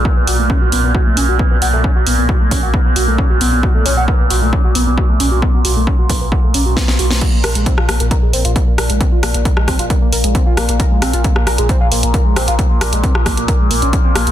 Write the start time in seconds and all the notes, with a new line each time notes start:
Already playing: A#2
0.05 B3, kick
0.16 B1 B3
0.27 B1 F#4, open hi-hat
0.39 B1 A3
0.50 C#4, kick
0.61 B1 F#4
0.72 B1 B3, open hi-hat
0.84 B1 B3
0.95 F#4, kick
1.06 B1 A3
1.17 B1 C#4, open hi-hat
1.28 B1 F#4
1.39 B3, kick
1.51 B1 B3
1.62 B1 F#4, open hi-hat
1.73 B1 A3
1.84 C#4, kick
1.96 B1 F#4
2.07 B1 B3, open hi-hat
2.18 B1 B3
2.29 F#4, kick
2.40 B1 A3
2.51 B1 C#4, kick, open hi-hat
2.63 B1 F#4
2.74 B3, kick
2.85 B1 B3
2.96 B1 F#4, open hi-hat
3.08 B1 A3
3.18 C#4, kick
3.30 B1 F#4
3.41 B1 B3, open hi-hat
3.52 B1 B3
3.63 F#4, kick
3.75 B1 A3
3.86 B1 C#4, open hi-hat
3.97 B1 F#4
4.08 B3, kick
4.19 B1 B3
4.30 B1 F#4, open hi-hat
4.42 B1 A3
4.53 C#4, kick
4.64 B1 F#4
4.75 B1 B3, open hi-hat
4.87 B1 B3
4.98 F#4, kick
5.09 B1 A3
5.20 B1 C#4, open hi-hat
5.31 B1 F#4
5.42 B3, kick
5.54 B1 B3
5.65 B1 F#4, open hi-hat
5.76 B1 A3
5.87 C#4, kick
5.99 B1 F#4
6.09 B1 B3, kick, open hi-hat
6.21 B1 B3
6.32 F#4, kick
6.43 B1 A3
6.54 B1 C#4, open hi-hat
6.66 B1 F#4
6.77 B3, kick, snare
6.88 B1 B3, snare
6.99 B1 F#4, open hi-hat
7.10 B1 A3, snare
7.21 A#2 A#3, kick, closed hi-hat, crash
7.33 A#1 A#3
7.44 A#1 A#4, cross-stick, open hi-hat
7.55 A#1 G#3, closed hi-hat
7.66 C4, kick, closed hi-hat
7.78 A#1 F4, cross-stick
7.89 A#1 A#3, cross-stick, open hi-hat
8.00 A#1 A#3, closed hi-hat
8.11 A#4, kick, closed hi-hat
8.22 A#1 G#3
8.33 A#1 C4, open hi-hat
8.45 A#1 F4, closed hi-hat
8.56 A#3, kick, closed hi-hat
8.67 A#1 A#3
8.78 A#1 A#4, cross-stick, open hi-hat
8.90 A#1 G#3, closed hi-hat
9.01 C4, kick, closed hi-hat
9.12 A#1 F4
9.23 A#1 A#3, cross-stick, open hi-hat
9.34 A#1 A#3, closed hi-hat
9.45 A#4, kick, closed hi-hat
9.57 A#1 G#3, cross-stick
9.68 A#1 C4, kick, cross-stick, open hi-hat
9.79 A#1 F4, closed hi-hat
9.90 A#3, kick, closed hi-hat
10.02 A#1 A#3
10.12 A#1 A#4, open hi-hat
10.24 A#1 G#3, closed hi-hat
10.35 C4, kick, closed hi-hat
10.46 A#1 F4
10.57 A#1 A#3, cross-stick, open hi-hat
10.69 A#1 A#3, closed hi-hat
10.80 A#4, kick, closed hi-hat
10.91 A#1 G#3
11.02 A#1 C4, cross-stick, open hi-hat
11.13 A#1 F4, closed hi-hat
11.24 A#3, kick, closed hi-hat
11.36 A#1 A#3, cross-stick
11.47 A#1 A#4, cross-stick, open hi-hat
11.58 A#1 G#3, closed hi-hat
11.69 C4, kick, closed hi-hat
11.81 A#1 F4
11.92 A#1 A#3, open hi-hat
12.03 A#1 A#3, closed hi-hat
12.14 A#4, kick, closed hi-hat
12.25 A#1 G#3
12.36 A#1 C4, cross-stick, open hi-hat
12.48 A#1 F4, closed hi-hat
12.59 A#3, kick, closed hi-hat
12.70 A#1 A#3
12.81 A#1 A#4, cross-stick, open hi-hat
12.93 A#1 G#3, closed hi-hat
13.04 C4, kick, closed hi-hat
13.15 A#1 F4, cross-stick
13.26 A#1 A#3, kick, cross-stick, open hi-hat
13.37 A#1 A#3, closed hi-hat
13.48 A#4, kick, closed hi-hat
13.60 A#1 G#3
13.71 A#1 A#3, open hi-hat
13.82 A#1 C#4, closed hi-hat
13.93 C#4, kick, closed hi-hat
14.04 A#1 C4
14.15 A#1 A#3, cross-stick, open hi-hat
14.27 A#1 A#3, closed hi-hat